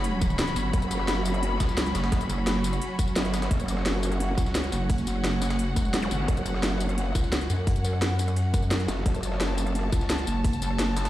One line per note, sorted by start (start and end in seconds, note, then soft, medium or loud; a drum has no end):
0.00 0.55 F#1 loud
0.00 11.10 F#3 medium
0.00 11.10 C#4 medium
0.00 11.10 F#4 medium
0.00 3.49 B5 medium
0.04 closed hi-hat loud
0.04 ride medium
0.21 kick loud
0.21 closed hi-hat medium
0.21 ride medium
0.21 tambourine medium
0.30 tambourine soft
0.39 snare loud
0.39 closed hi-hat medium
0.39 ride medium
0.47 snare medium
0.47 closed hi-hat soft
0.56 0.72 G1 loud
0.56 closed hi-hat medium
0.56 ride medium
0.56 tambourine medium
0.73 1.59 F#1 medium
0.73 kick loud
0.73 closed hi-hat medium
0.73 ride medium
0.82 closed hi-hat soft
0.82 tambourine soft
0.91 closed hi-hat medium
0.91 ride medium
0.91 tambourine medium
0.99 cross-stick soft
0.99 snare soft
1.08 snare loud
1.08 closed hi-hat medium
1.08 ride medium
1.25 closed hi-hat medium
1.25 ride medium
1.25 tambourine medium
1.34 cross-stick soft
1.34 closed hi-hat soft
1.43 closed hi-hat loud
1.43 ride medium
1.60 1.93 C#2 loud
1.60 kick loud
1.60 snare loud
1.60 closed hi-hat medium
1.60 ride medium
1.60 tambourine medium
1.69 snare soft
1.69 tambourine soft
1.77 snare loud
1.77 closed hi-hat loud
1.77 ride loud
1.86 snare soft
1.86 closed hi-hat soft
1.95 2.11 F#1 loud
1.95 snare loud
1.95 closed hi-hat medium
1.95 ride medium
1.95 tambourine medium
2.04 snare loud
2.04 ride medium
2.12 2.28 F#1 medium
2.12 kick loud
2.12 snare loud
2.12 closed hi-hat loud
2.12 ride medium
2.21 closed hi-hat soft
2.21 tambourine soft
2.29 2.80 F#1 loud
2.29 closed hi-hat medium
2.29 ride medium
2.29 tambourine medium
2.38 cross-stick soft
2.47 snare loud
2.47 closed hi-hat loud
2.47 ride medium
2.64 closed hi-hat medium
2.64 ride medium
2.64 tambourine medium
2.73 cross-stick soft
2.73 closed hi-hat soft
2.73 tambourine soft
2.82 closed hi-hat loud
2.82 ride medium
2.99 kick loud
2.99 closed hi-hat medium
2.99 ride medium
2.99 tambourine medium
3.08 tambourine soft
3.16 3.49 G1 loud
3.16 snare loud
3.16 closed hi-hat loud
3.16 ride medium
3.25 snare medium
3.25 closed hi-hat soft
3.34 snare loud
3.34 closed hi-hat medium
3.34 ride medium
3.34 tambourine medium
3.42 snare loud
3.42 closed hi-hat soft
3.42 ride medium
3.51 4.36 F#1 medium
3.51 9.04 F#5 medium
3.51 kick loud
3.51 closed hi-hat medium
3.51 ride medium
3.60 closed hi-hat soft
3.60 tambourine soft
3.68 closed hi-hat medium
3.68 ride medium
3.68 tambourine medium
3.77 cross-stick soft
3.77 snare soft
3.86 snare loud
3.86 closed hi-hat loud
3.86 ride medium
4.03 closed hi-hat medium
4.03 ride medium
4.03 tambourine medium
4.12 cross-stick soft
4.12 closed hi-hat soft
4.20 closed hi-hat loud
4.20 ride medium
4.38 4.71 C#2 loud
4.38 kick loud
4.38 snare soft
4.38 closed hi-hat medium
4.38 ride medium
4.38 tambourine medium
4.46 snare soft
4.46 tambourine soft
4.55 snare loud
4.55 closed hi-hat loud
4.55 ride loud
4.64 snare soft
4.64 closed hi-hat soft
4.72 5.69 F#1 loud
4.72 closed hi-hat medium
4.72 ride medium
4.72 tambourine medium
4.90 kick loud
4.90 closed hi-hat loud
4.90 open hi-hat medium
4.98 closed hi-hat soft
4.98 tambourine soft
5.07 closed hi-hat medium
5.07 ride medium
5.07 tambourine medium
5.16 cross-stick soft
5.24 snare loud
5.24 closed hi-hat medium
5.24 ride medium
5.42 snare loud
5.42 closed hi-hat medium
5.42 ride medium
5.42 tambourine medium
5.50 cross-stick soft
5.50 snare loud
5.50 closed hi-hat soft
5.50 ride medium
5.50 tambourine soft
5.59 closed hi-hat loud
5.59 ride medium
5.69 5.96 F1 loud
5.76 kick loud
5.76 closed hi-hat medium
5.76 ride medium
5.76 tambourine medium
5.85 tambourine soft
5.94 6.10 E1 loud
5.94 snare loud
5.94 closed hi-hat loud
5.94 ride medium
6.02 snare medium
6.02 closed hi-hat soft
6.02 zap medium
6.11 6.27 G1 medium
6.11 closed hi-hat medium
6.11 ride medium
6.11 tambourine medium
6.28 7.14 F#1 medium
6.28 kick loud
6.28 closed hi-hat medium
6.28 ride medium
6.37 closed hi-hat soft
6.37 tambourine soft
6.46 closed hi-hat medium
6.46 ride medium
6.46 tambourine medium
6.54 cross-stick soft
6.54 snare soft
6.63 snare loud
6.63 closed hi-hat medium
6.63 ride medium
6.80 closed hi-hat medium
6.80 ride medium
6.80 tambourine medium
6.89 cross-stick soft
6.89 closed hi-hat soft
6.98 closed hi-hat loud
6.98 ride medium
7.15 7.48 C#2 loud
7.15 kick loud
7.15 snare soft
7.15 closed hi-hat medium
7.15 ride medium
7.15 tambourine medium
7.24 snare soft
7.24 tambourine soft
7.32 snare loud
7.32 closed hi-hat medium
7.32 ride medium
7.41 snare soft
7.41 closed hi-hat soft
7.50 8.87 F#2 loud
7.50 closed hi-hat medium
7.50 ride medium
7.50 tambourine medium
7.67 kick loud
7.67 closed hi-hat medium
7.67 open hi-hat medium
7.76 closed hi-hat soft
7.76 tambourine soft
7.84 closed hi-hat medium
7.84 ride medium
7.84 tambourine medium
7.93 cross-stick soft
8.02 snare loud
8.02 closed hi-hat medium
8.02 ride medium
8.19 closed hi-hat medium
8.19 ride medium
8.19 tambourine medium
8.28 cross-stick soft
8.28 closed hi-hat soft
8.28 tambourine soft
8.36 closed hi-hat medium
8.36 ride medium
8.54 kick loud
8.54 closed hi-hat medium
8.54 ride medium
8.54 tambourine medium
8.62 tambourine soft
8.71 snare loud
8.71 closed hi-hat medium
8.71 ride loud
8.80 snare medium
8.80 closed hi-hat soft
8.88 9.04 F#1 loud
8.88 snare loud
8.88 closed hi-hat medium
8.88 ride medium
8.88 tambourine medium
8.97 snare soft
9.06 9.91 F#1 loud
9.06 11.10 A5 medium
9.06 kick loud
9.06 closed hi-hat medium
9.06 ride medium
9.14 closed hi-hat soft
9.14 tambourine soft
9.23 closed hi-hat medium
9.23 ride medium
9.23 tambourine medium
9.32 cross-stick soft
9.32 snare soft
9.40 snare loud
9.40 closed hi-hat medium
9.40 ride medium
9.58 closed hi-hat medium
9.58 ride medium
9.58 tambourine medium
9.66 cross-stick soft
9.66 closed hi-hat soft
9.75 closed hi-hat medium
9.75 ride medium
9.92 10.26 C#2 medium
9.92 kick loud
9.92 snare soft
9.92 closed hi-hat medium
9.92 ride medium
9.92 tambourine medium
10.01 snare soft
10.01 tambourine soft
10.10 snare loud
10.10 closed hi-hat medium
10.10 ride medium
10.18 snare soft
10.18 closed hi-hat soft
10.27 11.10 F#1 loud
10.27 closed hi-hat medium
10.27 ride medium
10.27 tambourine medium
10.44 kick loud
10.44 closed hi-hat loud
10.44 open hi-hat medium
10.53 closed hi-hat soft
10.53 tambourine soft
10.62 closed hi-hat medium
10.62 ride medium
10.62 tambourine medium
10.71 cross-stick soft
10.79 snare loud
10.79 closed hi-hat medium
10.79 ride medium
10.96 snare loud
10.96 closed hi-hat medium
10.96 ride medium
10.96 tambourine medium
11.05 cross-stick soft
11.05 snare loud
11.05 closed hi-hat soft
11.05 ride medium
11.05 tambourine soft